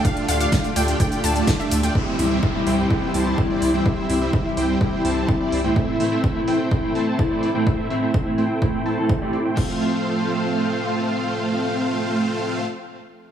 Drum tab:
CC |----------------|----------------|----------------|----------------|
RD |--x---x---x---x-|----------------|----------------|----------------|
HH |xxoxxxoxxxoxx-ox|--o---o---o---o-|--o---o---o---o-|--o---o---o---o-|
SH |x-xxxxxxxxxxxxxx|----------------|----------------|----------------|
SD |----o-------o---|----------------|----------------|----------------|
BD |o---o---o---o---|o---o---o---o---|o---o---o---o---|o---o---o---o---|

CC |----------------|x---------------|----------------|
RD |----------------|----------------|----------------|
HH |--o---o---o---o-|----------------|----------------|
SH |----------------|----------------|----------------|
SD |----------------|----------------|----------------|
BD |o---o---o---o---|o---------------|----------------|